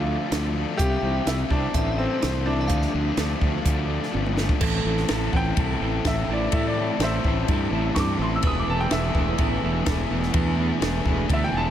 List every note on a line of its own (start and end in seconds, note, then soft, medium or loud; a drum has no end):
0.00 0.16 D2 medium
0.00 0.31 D3 medium
0.00 0.77 F3 medium
0.00 0.55 A3 medium
0.00 0.28 F4 medium
0.00 0.78 A4 medium
0.00 0.78 D5 medium
0.00 0.76 F5 medium
0.00 0.76 A5 medium
0.06 0.27 F3 medium
0.06 0.29 A3 medium
0.06 0.31 D4 loud
0.06 0.81 D4 medium
0.29 0.64 D2 medium
0.29 0.80 D3 medium
0.29 0.76 F3 medium
0.29 0.56 A3 medium
0.29 0.52 D4 medium
0.29 snare loud
0.29 closed hi-hat medium
0.53 0.80 A3 medium
0.53 0.78 A3 medium
0.53 0.77 D4 medium
0.77 0.96 C2 medium
0.77 1.73 C3 medium
0.77 1.24 G3 loud
0.77 1.04 C4 medium
0.77 1.28 G4 loud
0.77 1.74 E5 medium
0.77 kick loud
0.77 closed hi-hat medium
0.81 1.00 E4 loud
1.01 1.19 C2 medium
1.01 1.75 E3 medium
1.01 1.26 C4 medium
1.01 1.28 E4 medium
1.25 1.43 C2 loud
1.25 1.72 G3 medium
1.25 1.75 G3 medium
1.25 1.51 C4 loud
1.25 1.33 E4 loud
1.25 1.47 E4 medium
1.25 snare loud
1.25 closed hi-hat medium
1.49 1.66 C2 medium
1.49 1.75 C4 medium
1.49 2.01 D4 loud
1.49 1.73 E4 medium
1.49 kick medium
1.53 1.73 C4 medium
1.72 2.06 A1 medium
1.72 2.70 A2 medium
1.72 2.00 E3 medium
1.72 1.99 C4 loud
1.72 1.97 E4 loud
1.72 4.58 A4 medium
1.72 2.60 E5 medium
1.72 2.69 G5 medium
1.72 kick loud
1.72 closed hi-hat medium
1.98 2.19 E3 medium
1.98 2.70 C4 medium
1.98 2.48 C4 medium
1.98 2.21 C4 medium
1.98 2.22 E4 medium
2.21 2.69 C2 medium
2.21 2.68 E3 medium
2.21 2.70 E3 medium
2.21 2.49 C4 medium
2.21 2.45 E4 medium
2.21 snare loud
2.21 closed hi-hat medium
2.46 2.71 G3 medium
2.46 4.10 D4 loud
2.46 2.69 E4 medium
2.50 2.71 C4 medium
2.61 2.69 E5 medium
2.68 2.86 D2 medium
2.68 2.92 D3 medium
2.68 3.16 F3 medium
2.68 2.96 A3 loud
2.68 4.60 F4 medium
2.68 4.60 D5 medium
2.68 4.32 F5 medium
2.68 4.60 A5 medium
2.68 kick loud
2.68 closed hi-hat medium
2.72 2.92 D4 loud
2.82 snare soft
2.93 3.10 D2 medium
2.93 3.19 D4 medium
2.97 3.18 A3 medium
3.17 3.33 D2 medium
3.17 3.62 F3 medium
3.17 3.62 A3 medium
3.17 3.42 A3 medium
3.17 3.38 D4 medium
3.17 snare loud
3.17 closed hi-hat medium
3.39 3.58 D2 medium
3.39 3.65 D4 medium
3.39 3.88 D4 medium
3.39 kick medium
3.44 3.63 A3 medium
3.63 3.98 D2 medium
3.63 3.90 F3 medium
3.63 4.36 A3 medium
3.63 3.88 A3 medium
3.63 3.86 D4 medium
3.63 kick loud
3.63 closed hi-hat medium
3.87 4.12 A3 medium
3.87 4.14 D4 medium
3.87 4.61 D4 medium
3.91 4.11 F3 medium
4.03 snare soft
4.12 4.46 G1 medium
4.12 4.61 D3 medium
4.12 4.59 F3 medium
4.12 4.38 A3 medium
4.12 4.34 D4 medium
4.12 high tom medium
4.26 mid tom medium
4.35 4.61 A3 medium
4.35 4.59 D4 medium
4.35 snare medium
4.49 kick medium
4.61 4.80 A1 loud
4.61 4.86 A2 loud
4.61 8.40 C3 medium
4.61 4.85 E3 medium
4.61 4.86 E3 loud
4.61 8.40 E3 medium
4.61 4.87 A3 loud
4.61 6.52 A3 medium
4.61 4.85 C4 loud
4.61 4.87 C4 loud
4.61 11.70 E4 medium
4.61 4.86 E4 loud
4.61 4.88 E4 loud
4.61 8.54 A4 medium
4.61 4.87 A4 loud
4.61 kick loud
4.61 crash loud
4.85 5.03 A1 medium
4.85 5.09 A2 medium
4.85 5.09 E3 medium
4.85 5.10 E3 medium
4.85 5.11 A3 medium
4.85 5.10 C4 medium
4.85 5.11 C4 medium
4.85 5.10 E4 loud
4.85 5.11 E4 medium
4.85 5.12 A4 loud
4.97 snare soft
5.09 5.27 A1 medium
5.09 5.33 A2 medium
5.09 5.34 E3 medium
5.09 5.34 A3 medium
5.09 5.34 C4 medium
5.09 5.35 C4 loud
5.09 5.35 E4 medium
5.09 5.36 E4 loud
5.09 5.36 A4 loud
5.09 snare loud
5.09 ride bell medium
5.33 5.51 A1 medium
5.33 5.56 A2 medium
5.33 5.55 E3 medium
5.33 5.57 E3 medium
5.33 5.58 A3 medium
5.33 5.56 C4 medium
5.33 5.57 C4 medium
5.33 5.57 E4 medium
5.33 5.59 E4 medium
5.33 5.58 A4 loud
5.33 5.35 F#5 medium
5.33 kick medium
5.37 6.04 G5 medium
5.56 5.75 C2 medium
5.56 5.79 A2 medium
5.56 5.81 E3 loud
5.56 5.82 A3 loud
5.56 5.81 C4 loud
5.56 5.81 C4 medium
5.56 5.82 E4 loud
5.56 5.83 A4 loud
5.56 kick loud
5.56 ride bell medium
5.80 5.99 A1 medium
5.80 6.04 A2 medium
5.80 6.07 E3 medium
5.80 6.05 E3 medium
5.80 6.07 A3 loud
5.80 6.06 C4 medium
5.80 6.07 C4 medium
5.80 6.08 E4 medium
5.80 6.07 E4 medium
5.80 6.07 A4 loud
6.05 6.23 A1 medium
6.05 6.28 A2 medium
6.05 6.30 E3 medium
6.05 6.29 E3 medium
6.05 6.30 A3 medium
6.05 6.29 C4 medium
6.05 6.30 C4 medium
6.05 6.31 E4 medium
6.05 6.31 A4 medium
6.05 6.29 E5 medium
6.05 kick medium
6.05 snare loud
6.05 ride bell medium
6.28 6.47 A1 medium
6.28 6.54 A2 medium
6.28 6.55 E3 medium
6.28 6.54 E3 medium
6.28 6.55 A3 medium
6.28 6.53 C4 medium
6.28 6.56 C4 loud
6.28 6.55 E4 medium
6.28 6.56 E4 medium
6.28 6.56 A4 medium
6.33 6.54 D5 medium
6.52 6.89 A2 medium
6.52 6.78 A2 loud
6.52 6.77 E3 medium
6.52 6.79 E3 loud
6.52 8.42 G3 medium
6.52 6.80 A3 loud
6.52 6.77 C4 loud
6.52 6.78 E4 loud
6.52 6.64 E5 medium
6.52 kick loud
6.52 ride bell medium
6.56 6.80 C4 loud
6.56 6.81 E4 loud
6.56 6.79 A4 loud
6.68 7.01 D5 medium
6.77 7.00 A2 medium
6.77 7.01 E3 medium
6.77 7.02 E3 medium
6.77 7.02 A3 medium
6.77 7.01 C4 loud
6.77 7.02 C4 medium
6.77 7.03 E4 medium
6.77 7.04 A4 loud
6.99 7.18 A1 loud
6.99 7.24 A2 medium
6.99 7.24 E3 medium
6.99 7.25 E3 medium
6.99 7.25 A3 loud
6.99 7.24 C4 medium
6.99 7.46 C5 medium
6.99 snare loud
6.99 ride bell medium
7.03 7.26 C4 medium
7.03 7.25 E4 medium
7.03 7.27 E4 medium
7.03 7.26 A4 loud
7.03 7.48 E5 loud
7.24 7.43 A1 medium
7.24 7.48 A2 medium
7.24 7.49 E3 medium
7.24 7.50 E3 medium
7.24 7.51 A3 medium
7.24 7.48 C4 medium
7.24 7.50 C4 loud
7.24 7.50 E4 medium
7.24 7.51 E4 medium
7.24 7.51 A4 loud
7.24 kick medium
7.48 7.66 G2 medium
7.48 7.72 A2 medium
7.48 7.71 E3 medium
7.48 7.72 E3 loud
7.48 7.73 A3 loud
7.48 7.71 C4 loud
7.48 7.73 C4 loud
7.48 7.73 E4 loud
7.48 7.74 E4 loud
7.48 7.73 A4 loud
7.48 kick loud
7.48 ride bell medium
7.71 7.89 A1 medium
7.71 7.95 A2 medium
7.71 7.96 E3 medium
7.71 7.97 A3 medium
7.71 7.95 C4 medium
7.71 7.97 C4 medium
7.71 7.97 E4 loud
7.71 7.98 E4 loud
7.71 7.98 A4 loud
7.95 8.13 G2 medium
7.95 8.19 A2 medium
7.95 8.18 E3 medium
7.95 8.20 E3 medium
7.95 8.21 A3 medium
7.95 8.18 C4 loud
7.95 8.21 C4 medium
7.95 8.20 E4 medium
7.95 8.22 E4 medium
7.95 8.20 A4 loud
7.95 7.97 C#6 medium
7.95 kick medium
7.95 snare loud
7.95 ride bell medium
7.99 8.21 D6 loud
8.18 8.37 A1 medium
8.18 8.42 A2 medium
8.18 11.68 E3 medium
8.18 8.44 E3 medium
8.18 8.44 A3 loud
8.18 8.42 C4 medium
8.18 8.43 C4 medium
8.18 8.43 E4 medium
8.18 8.43 A4 loud
8.18 8.32 C6 medium
8.23 8.46 E4 medium
8.35 8.45 E6 medium
8.42 8.61 E1 loud
8.42 8.68 E2 loud
8.42 8.68 B2 loud
8.42 11.70 D3 medium
8.42 8.69 E3 loud
8.42 11.70 A3 medium
8.42 8.70 A3 loud
8.42 11.70 B3 medium
8.42 8.66 B3 loud
8.42 8.71 D4 loud
8.42 8.67 E4 medium
8.42 8.67 G#4 loud
8.42 11.70 B4 loud
8.42 kick loud
8.42 ride bell medium
8.46 8.71 E4 loud
8.46 8.56 D#6 loud
8.60 8.69 D6 medium
8.66 8.85 E1 medium
8.66 8.91 E2 medium
8.66 8.91 B2 medium
8.66 8.92 E3 medium
8.66 8.93 A3 medium
8.66 8.90 B3 medium
8.66 8.92 E4 medium
8.66 8.92 G#4 loud
8.66 8.80 A5 medium
8.71 8.94 D4 medium
8.71 8.94 E4 medium
8.80 8.91 G5 medium
8.90 9.09 E1 medium
8.90 9.14 E2 medium
8.90 9.13 B2 medium
8.90 9.15 E3 medium
8.90 9.16 A3 medium
8.90 9.15 B3 medium
8.90 9.17 D4 medium
8.90 9.15 E4 medium
8.90 9.17 E4 loud
8.90 9.15 G#4 medium
8.90 10.31 E5 medium
8.90 snare loud
8.90 ride bell medium
9.14 9.33 E1 medium
9.14 9.37 E2 medium
9.14 9.38 B2 medium
9.14 9.39 E3 medium
9.14 9.40 A3 medium
9.14 9.37 B3 medium
9.14 9.40 D4 loud
9.14 9.39 E4 medium
9.14 9.41 E4 medium
9.14 9.38 G#4 medium
9.14 kick medium
9.38 9.57 A1 medium
9.38 9.62 E2 loud
9.38 9.62 B2 loud
9.38 9.64 E3 loud
9.38 9.64 A3 loud
9.38 9.60 B3 loud
9.38 9.63 D4 loud
9.38 9.62 E4 loud
9.38 9.66 E4 loud
9.38 9.62 G#4 loud
9.38 kick loud
9.38 ride bell medium
9.62 9.81 E1 medium
9.62 9.86 E2 medium
9.62 9.87 B2 medium
9.62 9.88 E3 medium
9.62 9.89 A3 medium
9.62 9.83 B3 medium
9.62 9.89 D4 loud
9.62 9.85 E4 loud
9.62 9.85 G#4 loud
9.66 9.90 E4 medium
9.85 10.05 E1 medium
9.85 10.09 E2 medium
9.85 10.10 B2 medium
9.85 10.11 E3 medium
9.85 10.09 B3 medium
9.85 10.10 E4 medium
9.85 10.10 G#4 medium
9.85 kick medium
9.85 snare loud
9.85 ride bell medium
9.89 10.11 A3 medium
9.89 10.12 D4 medium
9.89 10.12 E4 loud
10.10 10.29 E1 medium
10.10 10.32 E2 medium
10.10 10.32 B2 medium
10.10 10.34 E3 loud
10.10 10.35 A3 medium
10.10 10.32 B3 medium
10.10 10.35 D4 medium
10.10 10.33 E4 medium
10.10 10.35 E4 medium
10.10 10.33 G#4 medium
10.23 snare soft
10.33 10.57 E2 loud
10.33 10.70 E2 loud
10.33 10.58 B2 loud
10.33 10.59 E3 loud
10.33 10.59 A3 loud
10.33 10.54 B3 loud
10.33 10.59 D4 loud
10.33 10.56 E4 loud
10.33 10.61 E4 loud
10.33 10.56 G#4 loud
10.33 kick loud
10.33 ride bell medium
10.56 10.82 E2 loud
10.56 10.82 B2 medium
10.56 10.85 E3 medium
10.56 10.79 B3 medium
10.56 10.81 E4 loud
10.56 10.81 G#4 loud
10.60 10.84 A3 medium
10.60 10.84 D4 loud
10.60 10.85 E4 medium
10.81 11.00 E1 medium
10.81 11.05 E2 medium
10.81 11.07 B2 loud
10.81 11.04 B3 medium
10.81 11.05 E4 medium
10.81 11.05 G#4 loud
10.81 snare loud
10.81 ride bell medium
10.85 11.08 E3 medium
10.85 11.08 A3 medium
10.85 11.08 D4 medium
10.85 11.09 E4 loud
11.05 11.23 E1 medium
11.05 11.29 E2 medium
11.05 11.31 B2 medium
11.05 11.31 E3 medium
11.05 11.33 A3 medium
11.05 11.28 B3 medium
11.05 11.30 E4 loud
11.05 11.29 G#4 loud
11.05 kick medium
11.09 11.33 D4 loud
11.09 11.34 E4 medium
11.29 11.48 D2 medium
11.29 11.54 E2 loud
11.29 11.54 B2 loud
11.29 11.55 E3 loud
11.29 11.56 A3 loud
11.29 11.52 B3 loud
11.29 11.54 E4 loud
11.29 11.53 G#4 loud
11.29 11.43 E5 medium
11.29 kick loud
11.29 ride bell medium
11.34 11.56 D4 loud
11.34 11.57 E4 loud
11.44 11.54 G5 medium
11.52 11.70 E1 medium
11.52 11.70 E2 loud
11.52 11.70 B2 medium
11.52 11.70 E3 medium
11.52 11.70 B3 medium
11.52 11.70 E4 medium
11.52 11.70 G#4 loud
11.52 11.55 G#5 medium
11.56 11.70 A3 medium
11.56 11.70 D4 medium
11.56 11.70 E4 loud
11.56 11.70 A5 medium